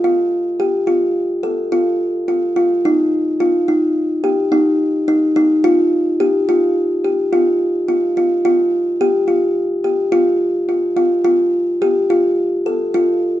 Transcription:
kalimba
0.04 F4
0.60 G4
0.87 F4
1.43 A4
1.72 F4
2.28 F4
2.56 F4
2.85 D#4
3.40 F4
3.68 D#4
4.24 G4
4.52 D#4
5.08 D#4
5.36 D#4
5.64 F4
6.20 G4
6.49 F4
7.05 G4
7.33 F4
7.88 F4
8.17 F4
8.45 F4
9.01 G4
9.28 F4
9.84 G4
10.12 F4
10.69 F4
10.97 F4
11.24 F4
11.82 G4
12.10 F4
12.66 A4
12.94 F4

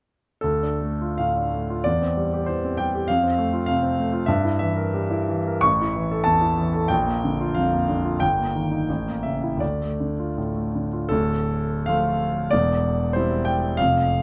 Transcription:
grand piano
0.41 D2 A4
0.63 D4
0.80 A3
1.02 F4
1.18 A2 F5
1.37 D4
1.53 A3
1.70 F4
1.84 E2 D5
2.02 C4
2.17 G3
2.33 G4
2.46 E3 C5
2.64 C4
2.77 G3 G5
2.95 G4
3.08 F2 F5
3.23 C4
3.38 A3
3.53 F4
3.66 C3 F5
3.83 C4
3.99 A3
4.13 F4
4.26 G2 E5
4.45 E4
4.59 E3 E5
4.76 A#4
4.94 G3
5.11 E4
5.29 E3
5.47 A#4
5.61 A1 C#6
5.81 E4
5.96 E3
6.11 A4
6.24 E2 A5
6.42 E4
6.58 E3
6.74 A4
6.88 A#1 G5
7.07 A#3
7.24 D3
7.41 F4
7.55 F2 F5
7.73 A#3
7.89 D3
8.05 F4
8.20 G1 G5
8.38 A#3
8.55 D#3
8.71 D#4
8.89 A1
9.08 A#3
9.23 C#3 E5
9.44 E4
9.57 D2 D5
9.81 A3
10.00 D3
10.19 F4
10.38 A2
10.56 A3
10.75 D3
10.93 F4
11.09 D1 D2 A4
11.86 F3 A3 F4 F5
12.51 E1 E2 D5
13.13 G3 C4 E4 C5
13.45 G5
13.77 F1 F2 F5

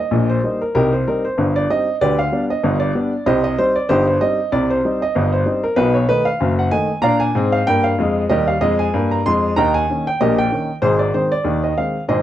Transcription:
upright piano
Already playing: D#5
0.11 A#1 A#2
0.30 C5
0.44 G3 A#3 D#4
0.61 A#4
0.75 C2 C3 D#4 G4 A#4
0.93 C5
1.08 G3 C4 D#4 A#4
1.25 C5
1.38 G1 G2
1.56 D5
1.70 G3 C4 D#4 D#5
2.01 D2 D3 G4 B4 D5
2.19 F5
2.32 G3 B3 D4
2.50 D#5
2.64 G1 G2
2.80 D5
2.95 G3 B3 D4
3.26 C2 C3 G4 C5 D#5
3.44 D#5
3.58 G3 C4 D#4 C5
3.76 D5
3.89 G1 G2 D#4 G4 C5
4.07 C5
4.21 G3 C4 D#4 D#5
4.52 C2 C3 D5
4.70 C5
4.85 G3 C4 D#4
5.02 D#5
5.15 G1 G2
5.33 C5
5.46 G3 C4 D#4
5.64 A#4
5.76 B1 B2 D#4 F#4 B4
5.94 C#5
6.08 D#3 A3 D#4 B4
6.25 F5
6.40 F#1 F#2
6.59 F#5
6.71 D#3 A3 D#4 G#5
7.02 A#2 D4 D5 F5 A#5
7.20 G#5
7.35 G#2 C4
7.52 F5
7.67 G2 A#3 G5
7.84 F5
7.98 F2 G#3
8.30 D#2 G3 G4 A#4 D#5
8.48 F5
8.61 F2 G#3 D#5
8.79 G#5
8.94 G2 A#3
9.11 A#5
9.26 F2 G#3 C6
9.56 D#2 D#3 D#5 G5 A#5
9.74 G#5
9.90 D#3 A#3 C#4
10.07 G5
10.21 A#1 A#2 G4 A#4 D#5
10.39 G5
10.52 D#3 A#3 C#4
10.82 G#1 G#2 D#4 G#4 C5
10.99 D5
11.14 D#3 G#3 C4 C5
11.32 D5
11.44 D#2 D#3
11.64 D#5
11.78 D#3 G#3 C4 F5
12.08 G#1 G#2 G#4 C5 D#5

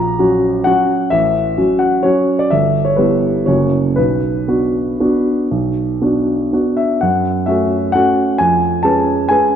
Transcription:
grand piano
Already playing: A#1 A#5
0.19 F#3 C#4 F#4
0.64 F#3 C#4 F#4 F#5
1.10 A1 E5
1.57 F#3 C#4 F#4
1.79 F#5
2.03 F#3 C#4 F#4 C#5
2.39 D5
2.50 G1 E5
2.85 C#5
2.96 G3 B3 E4 B4
3.46 F#1 A#3 C#4 F#4 C#5
3.96 B1 B4
4.48 B3 D4 F#4
5.00 B3 D4 F#4
5.51 B1
6.01 B3 D4 F#4
6.53 B3 D4 F#4
6.77 E5
7.01 F#2 F#5
7.46 A3 C#4 F#4 E5
7.92 A3 C#4 F#4 F#5
8.38 F2 G#5
8.83 G#3 C#4 B4 A5
9.29 G#3 C#4 B4 G#5

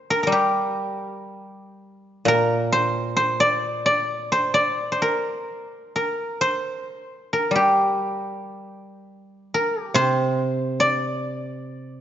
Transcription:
guzheng
Already playing: C5
0.10 A#4
0.23 G3 A#4
0.32 G4
2.25 A#2 A#4
2.72 C5
3.17 C5
3.40 D5
3.86 D5
4.32 C5
4.54 D5
4.92 C5
5.02 A#4
5.96 A#4
6.41 C5
7.33 A#4
7.51 G3
7.55 G4
9.54 A#4
9.81 G4
9.94 C3 C5
10.80 D5

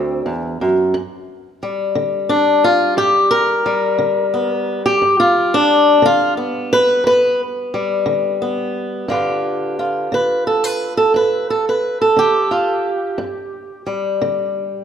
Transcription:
steel-string acoustic guitar
Already playing: D2 C4
0.26 E2
0.61 F#2
0.94 G2
1.63 G3
1.95 D3
2.29 D4
2.64 F4
2.97 G2 G4
3.31 A#4
3.66 G3
3.99 D3
4.34 B3
4.86 G4
5.02 G2
5.20 F4
5.54 D4
6.02 D3 F4
6.37 B3
6.73 B4
7.04 G2 B4
7.74 G3
8.06 D3
8.42 B3
9.08 G2 D3 F4 G4 B4
9.79 F4
10.12 D3 B4
10.47 A4
10.64 B4
10.97 A4
11.14 G2 B4
11.50 A4
11.69 B4
12.01 A4
12.17 D3 G4
12.51 F4
13.18 G2
13.87 G3
14.22 D3

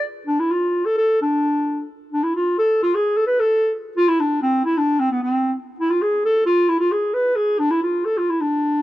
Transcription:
clarinet
0.27 D4
0.39 E4
0.51 F4
0.85 A4
0.97 A4
1.22 D4
2.12 D4
2.23 E4
2.36 F4
2.58 A4
2.83 F4
2.95 G#4
3.17 A4
3.27 B4
3.40 A4
3.97 F4
4.08 E4
4.20 D4
4.42 C4
4.65 E4
4.77 D4
4.99 C4
5.11 B3
5.22 C4
5.80 E4
5.90 F4
6.02 G#4
6.25 A4
6.46 F4
6.69 E4
6.79 F4
6.91 G#4
7.14 B4
7.36 G#4
7.59 D4
7.71 E4
7.82 F4
8.05 A4
8.17 F4
8.30 E4
8.41 D4

